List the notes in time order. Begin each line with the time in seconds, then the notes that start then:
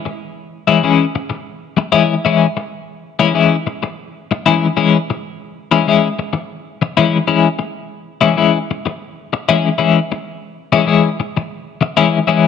0.05 muted clean electric guitar stroke
0.67 E3 G#3 C#4 E4
0.83 E3 G#3 C#4 E4
1.15 muted clean electric guitar stroke
1.30 muted clean electric guitar stroke
1.77 muted clean electric guitar stroke
1.92 E3 G#3 C#4 E4
2.25 E3 G#3 C#4 E4
2.57 muted clean electric guitar stroke
3.19 E3 G#3 C#4 E4
3.34 E3 G#3 C#4 E4
3.67 muted clean electric guitar stroke
3.83 muted clean electric guitar stroke
4.31 muted clean electric guitar stroke
4.46 E3 G#3 C#4 E4
4.77 E3 G#3 C#4 E4
5.10 muted clean electric guitar stroke
5.72 E3 G#3 C#4 E4
5.87 E3 G#3 C#4 E4
6.19 muted clean electric guitar stroke
6.33 muted clean electric guitar stroke
6.82 muted clean electric guitar stroke
6.97 E3 G#3 C#4 E4
7.27 E3 G#3 C#4 E4
7.59 muted clean electric guitar stroke
8.21 E3 G#3 C#4 E4
8.37 E3 G#3 C#4 E4
8.71 muted clean electric guitar stroke
8.86 muted clean electric guitar stroke
9.33 muted clean electric guitar stroke
9.49 E3 G#3 C#4 E4
9.78 E3 G#3 C#4 E4
10.12 muted clean electric guitar stroke
10.72 E3 G#3 C#4 E4
10.87 E3 G#3 C#4 E4
11.20 muted clean electric guitar stroke
11.37 muted clean electric guitar stroke
11.81 muted clean electric guitar stroke
11.97 E3 G#3 C#4 E4
12.27 E3 G#3 C#4 E4